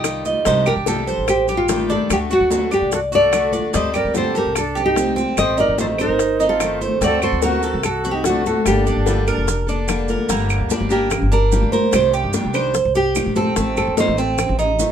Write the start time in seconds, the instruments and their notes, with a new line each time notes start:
Already playing: upright bass C2, cuban tres G4, nylon-string guitar D#5
0.04 steel-string acoustic guitar D#3 G3 D#4 F4, high bongo, low bongo, high conga, claves, maracas
0.25 cuban tres D#5, high bongo, high conga, maracas
0.45 upright bass C2, steel-string acoustic guitar C3 D#3 G3 D4 G4, cuban tres D#4, nylon-string guitar C5, high bongo, high conga, maracas
0.66 steel-string acoustic guitar G3 D4 G4, cuban tres G4, nylon-string guitar A#4, high bongo, claves, maracas
0.76 upright bass C2
0.86 steel-string acoustic guitar C3 D#3 G3 D4 G4, nylon-string guitar A4, high bongo, high conga, maracas
1.07 steel-string acoustic guitar G3 D4 G4, cuban tres C5, high conga, maracas
1.18 upright bass A1
1.27 nylon-string guitar G4, muted steel-string acoustic guitar stroke, high bongo, high conga, claves, maracas
1.47 steel-string acoustic guitar G3 D4 G4, cuban tres G4, high bongo, maracas
1.57 nylon-string guitar F4
1.68 steel-string acoustic guitar C3 D#3 G3 D4 G4, high bongo, low bongo, high conga, maracas
1.89 cuban tres D4, nylon-string guitar A4, high bongo, high conga, maracas
2.09 upright bass D2, steel-string acoustic guitar D3 A3 D4 F#4, nylon-string guitar G4, high bongo, high conga, claves, maracas
2.30 steel-string acoustic guitar A3 D4 F#4, cuban tres F#4, nylon-string guitar F#4, high bongo, maracas
2.40 upright bass D2
2.50 steel-string acoustic guitar D3 A3 D4 F#4, high bongo, high conga, maracas
2.70 steel-string acoustic guitar A3 D4 F#4, nylon-string guitar G4, cuban tres D5, high bongo, claves, maracas
2.81 upright bass C2
2.91 flute F#4, nylon-string guitar A4, muted steel-string acoustic guitar stroke, high bongo, high conga, maracas
3.11 steel-string acoustic guitar A3 D4 F#4, cuban tres F#4, flute A4, nylon-string guitar D5, high conga, maracas
3.32 steel-string acoustic guitar D3 A3 D4 F#4, high bongo, low bongo, high conga, claves, maracas
3.52 cuban tres D5, high bongo, high conga, maracas
3.73 upright bass D2, steel-string acoustic guitar D3 G3 C4 G4, cuban tres D4, flute C5, nylon-string guitar D#5, high bongo, high conga, maracas
3.94 steel-string acoustic guitar G3 C4 G4, cuban tres G4, flute A#4, nylon-string guitar D5, high bongo, high conga, claves, maracas
4.05 upright bass D2
4.14 steel-string acoustic guitar D3 G3 C4 G4, flute A4, nylon-string guitar C5, high bongo, high conga, maracas
4.35 steel-string acoustic guitar G3 C4 G4, flute G4, cuban tres A4, nylon-string guitar A#4, high conga, maracas
4.46 upright bass C2
4.55 flute D4, nylon-string guitar A4, muted steel-string acoustic guitar stroke, high bongo, high conga, claves, maracas
4.75 steel-string acoustic guitar G3 C4 G4, cuban tres G4, high bongo, high conga, maracas
4.84 flute D#4, nylon-string guitar G4
4.95 steel-string acoustic guitar D3 G3 C4 G4, high bongo, low bongo, high conga, maracas
5.16 cuban tres C4, high bongo, high conga, maracas
5.37 upright bass A1, steel-string acoustic guitar D#3 A3 C4, flute C5, nylon-string guitar D#5, high bongo, high conga, claves, maracas
5.57 steel-string acoustic guitar A3 C4, cuban tres D#4, flute A#4, nylon-string guitar D5, high bongo, high conga, maracas
5.68 upright bass A1
5.78 steel-string acoustic guitar D#3 A3 C4, flute A4, nylon-string guitar C5, high bongo, high conga, maracas
5.98 steel-string acoustic guitar A3 C4, flute D#4, nylon-string guitar A#4, cuban tres C5, high bongo, claves, maracas
6.09 upright bass G1
6.19 muted steel-string acoustic guitar stroke, high bongo, high conga, maracas
6.39 steel-string acoustic guitar A3 C4, cuban tres D#4, high conga, maracas
6.48 flute F4, nylon-string guitar A4
6.60 steel-string acoustic guitar D#3 A3 C4, high bongo, low bongo, high conga, claves, maracas
6.81 cuban tres C5, high bongo, high conga, maracas
7.01 upright bass D2, steel-string acoustic guitar D3 A3 C4 F#4, cuban tres C4, flute A4, nylon-string guitar D5, high bongo, high conga, maracas
7.22 steel-string acoustic guitar A3 C4 F#4, cuban tres F#4, flute A4, nylon-string guitar C5, high bongo, high conga, claves, maracas
7.32 upright bass D2
7.42 steel-string acoustic guitar D3 A3 C4 F#4, flute F#4, nylon-string guitar A#4, high bongo, high conga, maracas
7.62 steel-string acoustic guitar A3 C4 F#4, cuban tres A4, high conga, maracas
7.74 upright bass C2
7.83 flute F#4, nylon-string guitar A4, muted steel-string acoustic guitar stroke, high bongo, high conga, claves, maracas
8.04 steel-string acoustic guitar A3 C4 F#4, cuban tres F#4, high bongo, high conga, maracas
8.11 flute D#4, nylon-string guitar G4
8.24 steel-string acoustic guitar D3 A3 C4 F#4, flute D4, nylon-string guitar F#4, high bongo, low bongo, high conga, maracas
8.45 flute F#4, nylon-string guitar A4, high bongo, high conga, maracas
8.65 upright bass G1, steel-string acoustic guitar D3 G3 A#3 D4 A4, flute D4, nylon-string guitar G4, high bongo, high conga, claves, maracas
8.85 steel-string acoustic guitar A#3 D4 A4, cuban tres D4, high bongo, high conga, maracas
8.97 upright bass G1
9.06 steel-string acoustic guitar D3 G3 A#3 D4 A4, high bongo, high conga, maracas
9.27 steel-string acoustic guitar A#3 D4 A4, cuban tres A#4, high bongo, claves, maracas
9.37 upright bass F1
9.47 muted steel-string acoustic guitar stroke, high bongo, high conga, maracas
9.67 steel-string acoustic guitar A#3 D4 A4, cuban tres D4, high conga, maracas
9.87 steel-string acoustic guitar D3 G3 A#3 D4 A4, high bongo, low bongo, high conga, claves, maracas
10.08 cuban tres A#4, high bongo, high conga, maracas
10.28 upright bass G1, steel-string acoustic guitar D3 G3 A#3 D4 G4, cuban tres A#3, high bongo, high conga, maracas
10.50 claves, maracas
10.60 upright bass D2
10.69 steel-string acoustic guitar G3 A#3 D4 G4, cuban tres D4, high bongo, high conga, maracas
10.81 upright bass G1
10.89 steel-string acoustic guitar G3 A#3 D4 G4, cuban tres A#3, nylon-string guitar G4, high bongo, high conga, maracas
11.10 muted steel-string acoustic guitar stroke, high bongo, high conga, low conga, claves, maracas
11.22 upright bass G1
11.32 cuban tres D4, nylon-string guitar A#4, high bongo, high conga, maracas
11.52 steel-string acoustic guitar G3 A#3 D4 G4, high bongo, low bongo, high conga, maracas
11.63 upright bass D2
11.72 nylon-string guitar A#4, cuban tres C5, high bongo, high conga, maracas
11.91 upright bass C2, steel-string acoustic guitar C3 D#3 G3 D4 G4, high bongo, high conga, claves, maracas
11.95 nylon-string guitar C5
12.14 cuban tres G4, high conga, maracas
12.24 upright bass G2
12.32 steel-string acoustic guitar D#3 G3 D4 G4, high bongo, high conga, maracas
12.45 upright bass C2
12.54 steel-string acoustic guitar D#3 G3 D4 G4, cuban tres C5, high bongo, high conga, claves, maracas
12.74 muted steel-string acoustic guitar stroke, high bongo, high conga, maracas
12.85 upright bass C2
12.95 cuban tres G4, nylon-string guitar G4, high bongo, high conga, maracas
13.15 steel-string acoustic guitar D#3 G3 D4 G4, high bongo, low bongo, high conga, claves, maracas
13.26 upright bass A#1
13.36 cuban tres C4, nylon-string guitar A4, high bongo, high conga, maracas
13.56 upright bass A1, steel-string acoustic guitar D#3 A3 C4, cuban tres C4, high bongo, high conga, maracas
13.77 nylon-string guitar A4, high conga, claves, maracas
13.87 upright bass D#2
13.97 steel-string acoustic guitar D#3 A3 C4, cuban tres D#4, nylon-string guitar C5, high bongo, high conga, maracas
14.08 upright bass A1
14.17 steel-string acoustic guitar A3 C4, cuban tres C4, high bongo, high conga, maracas
14.38 muted steel-string acoustic guitar stroke, high bongo, high conga, low conga, claves, maracas
14.49 upright bass A1
14.59 cuban tres D#4, high bongo, high conga, low conga, maracas
14.79 steel-string acoustic guitar D#3 A3 C4, high bongo, low bongo, high conga, maracas